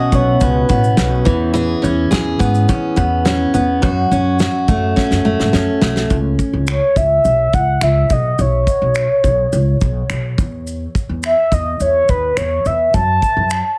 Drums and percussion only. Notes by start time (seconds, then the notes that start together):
0.12 kick, shaker
0.41 kick, shaker
0.69 kick, shaker
0.84 shaker
0.97 snare, shaker
1.26 kick, shaker
1.55 shaker
1.84 shaker
2.11 snare, shaker
2.40 kick, shaker
2.55 shaker
2.69 kick, shaker
2.97 kick, shaker
3.26 snare, shaker
3.54 shaker
3.83 kick, shaker
4.12 shaker
4.39 snare, shaker
4.68 kick, shaker
4.97 kick, snare
5.11 snare
5.40 snare
5.53 snare
5.82 snare
5.96 snare
6.10 kick, shaker
6.39 kick, shaker
6.67 finger snap, shaker
6.96 kick, shaker
7.25 shaker
7.53 kick, shaker
7.81 finger snap, shaker
8.10 kick, shaker
8.39 shaker
8.67 kick, shaker
8.95 finger snap, shaker
9.24 kick, shaker
9.53 shaker
9.81 kick, shaker
10.10 finger snap, shaker
10.38 kick, shaker
10.67 shaker
10.95 kick, shaker
11.23 finger snap, shaker
11.52 kick, shaker
11.80 shaker
12.09 kick, shaker
12.37 finger snap, shaker
12.65 shaker
12.94 kick, shaker
13.22 kick, shaker
13.50 finger snap, shaker